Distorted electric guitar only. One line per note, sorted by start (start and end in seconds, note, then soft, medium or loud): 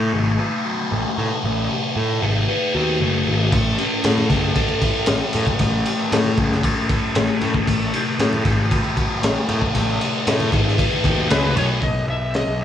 0.00 0.90 A3 medium
0.00 0.12 D#4 medium
0.13 1.16 D#4 medium
0.39 1.69 B4 medium
0.65 1.96 F#4 medium
0.91 1.42 A3 medium
1.17 1.69 D#4 medium
1.43 1.95 A3 medium
1.70 2.20 D#4 medium
1.96 2.99 A3 medium
2.22 3.25 D#4 medium
2.49 3.52 B4 medium
2.74 3.52 F#4 medium
3.00 3.51 A3 medium
3.26 3.52 D#4 medium
3.52 4.03 A3 medium
3.78 4.29 C#4 medium
4.04 5.07 A3 medium
4.31 5.32 C#4 medium
4.56 5.86 A4 medium
4.82 6.12 E4 medium
5.08 5.59 A3 medium
5.33 5.85 C#4 medium
5.60 6.11 A3 medium
5.86 6.38 C#4 medium
6.12 7.14 A3 medium
6.39 7.41 C#4 medium
6.64 7.68 A4 medium
6.90 7.68 E4 medium
7.15 7.66 A3 medium
7.42 7.68 C#4 medium
7.67 8.18 A3 medium
7.93 8.45 D#4 medium
8.19 9.21 A3 medium
8.45 9.48 D#4 medium
8.71 10.01 B4 medium
8.96 10.26 F#4 medium
9.22 9.73 A3 medium
9.48 9.99 D#4 medium
9.74 10.26 A3 medium
10.00 10.51 D#4 medium
10.27 11.28 A3 medium
10.52 11.55 D#4 medium
10.78 11.82 B4 medium
11.04 11.82 F#4 medium
11.29 11.82 A3 medium
11.56 11.82 D#4 medium